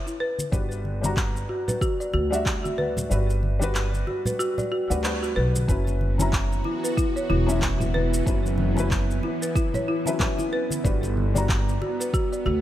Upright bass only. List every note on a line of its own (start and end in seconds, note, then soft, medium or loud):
0.52 1.44 G1 medium
2.14 3.05 D2 medium
3.11 4.02 G1 medium
4.90 5.31 D2 medium
5.37 5.62 B1 medium
5.69 6.60 F#1 medium
7.30 8.22 E1 loud
8.27 9.18 F#1 medium
10.85 11.76 G1 loud
12.46 12.61 D2 loud